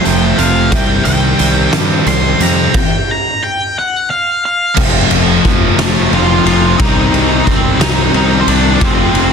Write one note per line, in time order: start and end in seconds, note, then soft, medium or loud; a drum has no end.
0.00 0.73 F3 medium
0.00 0.36 F3 medium
0.00 0.37 A3 medium
0.00 0.71 C4 medium
0.04 0.32 F1 medium
0.04 0.35 F2 medium
0.04 0.36 C3 medium
0.04 0.38 C4 medium
0.04 0.37 F4 medium
0.04 0.38 G5 loud
0.04 closed hi-hat medium
0.37 0.74 F1 medium
0.37 0.69 F2 medium
0.37 0.69 C3 medium
0.37 0.70 F3 medium
0.37 0.70 A3 medium
0.37 0.71 C4 medium
0.37 0.71 F4 medium
0.37 0.72 F5 medium
0.37 closed hi-hat medium
0.71 0.98 C2 medium
0.71 1.04 C3 medium
0.71 1.05 D#3 medium
0.71 1.05 G3 medium
0.71 1.05 C4 medium
0.71 1.06 G4 medium
0.71 1.04 G5 loud
0.71 kick loud
0.71 closed hi-hat medium
1.05 1.32 C2 medium
1.05 1.38 C3 medium
1.05 1.38 D#3 medium
1.05 1.39 G3 medium
1.05 1.39 C4 medium
1.05 1.40 G4 medium
1.05 1.71 G5 loud
1.05 closed hi-hat medium
1.39 1.66 C2 medium
1.39 1.72 C3 medium
1.39 1.73 D#3 medium
1.39 1.73 G3 medium
1.39 1.74 C4 loud
1.39 1.74 G4 medium
1.39 closed hi-hat medium
1.73 1.99 G2 medium
1.73 2.05 C3 medium
1.73 2.06 D#3 medium
1.73 2.06 G3 medium
1.73 2.07 C4 medium
1.73 2.07 G4 medium
1.73 snare loud
1.73 closed hi-hat medium
2.06 2.33 C2 medium
2.06 2.39 C3 medium
2.06 2.40 D#3 medium
2.06 2.40 G3 medium
2.06 2.41 C4 loud
2.06 2.42 G4 medium
2.06 2.40 C6 loud
2.06 closed hi-hat medium
2.40 2.67 F2 medium
2.40 2.73 C3 medium
2.40 2.73 D#3 medium
2.40 2.73 G3 medium
2.40 2.73 C4 medium
2.40 2.74 G4 loud
2.40 2.75 A#5 medium
2.40 closed hi-hat medium
2.74 3.09 G5 medium
2.74 kick loud
2.74 crash loud
3.11 3.43 A#5 medium
3.44 3.76 G5 medium
3.79 4.10 F#5 medium
4.10 4.43 F5 medium
4.45 4.77 F5 loud
4.75 5.06 F1 loud
4.75 5.75 F2 loud
4.75 5.76 C3 loud
4.75 6.09 F3 medium
4.75 6.10 A3 medium
4.75 kick loud
4.75 crash loud
4.79 6.12 C4 medium
4.79 6.11 F4 medium
5.11 5.39 F1 medium
5.11 ride medium
5.45 5.73 F1 medium
5.45 kick medium
5.45 ride medium
5.77 6.06 F1 medium
5.77 6.78 F2 medium
5.77 6.77 C3 medium
5.77 6.77 F3 medium
5.77 6.11 A3 medium
5.77 6.10 A4 medium
5.77 snare loud
5.77 ride loud
6.10 6.40 F1 medium
6.10 6.76 F3 medium
6.10 6.77 A3 medium
6.10 6.80 C4 medium
6.10 6.78 F4 medium
6.10 6.44 F4 medium
6.10 ride medium
6.15 6.44 F5 medium
6.45 6.74 F1 medium
6.45 6.77 F4 medium
6.45 6.77 F5 medium
6.45 ride medium
6.78 7.08 C2 loud
6.78 8.11 C3 medium
6.78 8.12 D#3 loud
6.78 8.12 G3 loud
6.78 8.14 C4 loud
6.78 7.42 D#4 medium
6.78 8.13 G4 medium
6.78 7.48 D#5 medium
6.78 kick loud
6.78 ride loud
7.11 7.40 C2 medium
7.11 ride medium
7.46 7.75 C2 loud
7.46 7.78 C4 medium
7.46 7.81 C5 medium
7.46 kick medium
7.46 ride medium
7.79 8.08 C2 loud
7.79 8.80 C3 medium
7.79 8.79 G3 medium
7.79 9.33 C4 medium
7.79 8.12 D#4 medium
7.79 8.11 D#5 loud
7.79 snare loud
7.79 ride loud
8.12 8.42 C2 medium
8.12 8.78 C3 medium
8.12 8.79 D#3 medium
8.12 8.79 G3 medium
8.12 8.82 C4 medium
8.12 8.39 D#4 medium
8.12 8.80 G4 loud
8.12 8.40 D#5 medium
8.12 ride medium
8.41 8.48 C5 medium
8.47 8.76 C2 medium
8.47 8.80 D4 medium
8.47 8.83 D5 medium
8.47 ride medium
8.80 9.09 F1 loud
8.80 9.33 F2 loud
8.80 9.33 C3 loud
8.80 9.33 F3 medium
8.80 9.33 A3 medium
8.80 9.33 C4 loud
8.80 9.33 F4 loud
8.80 kick loud
8.80 ride loud
8.84 9.33 C4 medium
8.84 9.33 C5 medium
9.14 9.33 F1 medium
9.14 ride medium